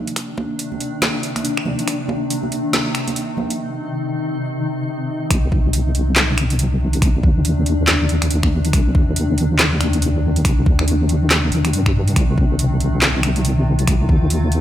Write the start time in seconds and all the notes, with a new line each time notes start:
Already playing: C3 D#3 D4
0.07 closed hi-hat
0.16 finger snap, kick, closed hi-hat
0.38 kick, high conga
0.59 closed hi-hat
0.72 high conga
0.80 closed hi-hat
1.02 snare, closed hi-hat, high conga
1.23 closed hi-hat
1.36 finger snap, closed hi-hat, high conga
1.45 closed hi-hat
1.57 finger snap, kick
1.65 high conga, low conga
1.79 closed hi-hat
1.88 D#4, finger snap, kick, closed hi-hat
2.08 kick, high conga
2.30 closed hi-hat
2.43 high conga
2.52 closed hi-hat
2.73 snare, closed hi-hat, high conga
2.95 finger snap, closed hi-hat
3.08 closed hi-hat, high conga
3.16 closed hi-hat
3.37 high conga, low conga
3.50 closed hi-hat
5.30 C2 C3 D#3 D4, finger snap, kick, closed hi-hat
5.52 kick
5.73 closed hi-hat
5.95 closed hi-hat
6.16 snare, clap, closed hi-hat
6.38 finger snap, closed hi-hat
6.50 closed hi-hat
6.59 closed hi-hat
6.93 closed hi-hat
7.02 C2, finger snap, kick, closed hi-hat
7.23 D#2, kick
7.45 closed hi-hat
7.66 closed hi-hat
7.88 snare, clap, closed hi-hat
8.09 closed hi-hat
8.22 finger snap, closed hi-hat
8.31 closed hi-hat
8.43 finger snap, kick
8.65 closed hi-hat
8.73 C2, finger snap, kick, closed hi-hat
8.95 D#2, kick
9.16 closed hi-hat
9.38 closed hi-hat
9.59 snare, clap, closed hi-hat
9.81 finger snap, closed hi-hat
9.93 closed hi-hat
10.02 closed hi-hat
10.36 closed hi-hat
10.45 C2, finger snap, kick, closed hi-hat
10.66 D#2, kick
10.79 finger snap
10.88 closed hi-hat
11.09 closed hi-hat
11.31 snare, clap, closed hi-hat
11.52 D#2, closed hi-hat
11.65 finger snap, closed hi-hat
11.73 G2, closed hi-hat
11.86 finger snap, kick
12.08 closed hi-hat
12.16 C2 F4, finger snap, kick, closed hi-hat
12.38 kick
12.59 closed hi-hat
12.80 closed hi-hat
13.02 snare, clap, closed hi-hat
13.23 finger snap, closed hi-hat
13.36 closed hi-hat
13.45 closed hi-hat
13.79 closed hi-hat
13.87 C2, finger snap, kick, closed hi-hat
14.09 D#2, kick
14.30 closed hi-hat
14.52 closed hi-hat